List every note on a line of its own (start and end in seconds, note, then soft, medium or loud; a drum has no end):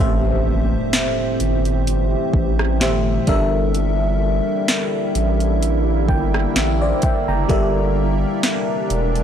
0.00 0.75 A1 loud
0.00 1.36 A2 medium
0.00 3.24 E3 medium
0.00 7.45 G3 medium
0.00 1.37 A3 medium
0.00 3.24 C4 medium
0.00 1.37 G4 medium
0.00 3.24 G4 medium
0.00 1.37 C5 medium
0.00 1.38 E5 medium
0.00 impact medium
0.93 snare loud
0.93 closed hi-hat medium
1.40 2.16 G1 medium
1.40 closed hi-hat medium
1.65 closed hi-hat soft
1.87 closed hi-hat medium
2.34 2.82 A1 medium
2.34 kick medium
2.59 cross-stick medium
2.80 3.18 G1 loud
2.80 3.27 A2 medium
2.80 3.27 A3 medium
2.80 3.28 G4 medium
2.80 3.28 C5 medium
2.80 3.28 E5 medium
2.80 snare loud
3.27 4.41 G1 loud
3.27 7.46 D3 medium
3.27 4.78 G3 medium
3.27 9.23 A#3 medium
3.27 4.78 D4 medium
3.27 7.46 E4 medium
3.27 4.79 A4 medium
3.27 4.79 A#4 medium
3.27 4.79 E5 loud
3.27 kick loud
3.27 closed hi-hat medium
3.75 closed hi-hat medium
4.68 snare loud
4.68 closed hi-hat medium
5.15 6.10 A1 medium
5.15 closed hi-hat medium
5.40 closed hi-hat soft
5.62 closed hi-hat medium
6.09 6.46 G1 medium
6.09 6.53 G5 medium
6.09 kick loud
6.34 cross-stick medium
6.56 6.93 A1 loud
6.56 6.79 E5 medium
6.56 snare loud
6.82 7.02 C5 medium
6.82 7.46 D5 medium
6.82 7.02 E5 medium
7.02 7.27 E5 medium
7.02 7.27 G5 medium
7.02 kick loud
7.02 closed hi-hat medium
7.28 7.45 F#1 medium
7.28 7.73 G5 medium
7.28 7.73 A#5 medium
7.49 8.25 G1 loud
7.49 9.23 C3 medium
7.49 9.23 E3 medium
7.49 8.86 G3 medium
7.49 9.23 D4 loud
7.49 8.87 G4 medium
7.49 8.87 A4 medium
7.49 8.87 A#4 medium
7.49 8.87 D5 medium
7.49 8.88 E5 medium
7.49 kick loud
7.49 closed hi-hat medium
8.43 snare loud
8.43 closed hi-hat medium
8.90 9.23 E1 loud
8.90 closed hi-hat medium
9.15 closed hi-hat soft